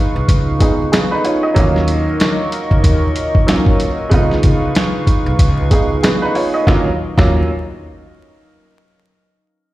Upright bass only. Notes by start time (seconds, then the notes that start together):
0.16 B1
0.29 C#2
1.56 D#2
2.71 C#2
2.84 D#2
4.12 C#2
4.44 C#2
5.26 B1
5.39 C#2
6.67 D#2
7.18 D#2